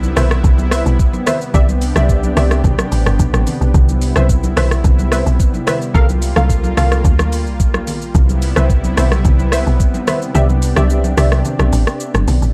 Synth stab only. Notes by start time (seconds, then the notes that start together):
0.16 B4 C5 E5
0.71 B4 C5 E5
1.26 B4 C5 E5
1.54 G4 D5 E5
1.96 G4 D5 E5
2.36 G4 D5 E5
4.16 B4 C5 E5
4.57 B4 C5 E5
5.12 B4 C5 E5
5.67 B4 C5 E5
5.94 A4 A#4 F5
6.36 A4 A#4 F5
6.77 A4 A#4 F5
8.56 B4 C5 E5
8.97 B4 C5 E5
9.52 B4 C5 E5
10.07 B4 C5 E5
10.34 G4 D5 E5
10.77 G4 D5 E5
11.17 G4 D5 E5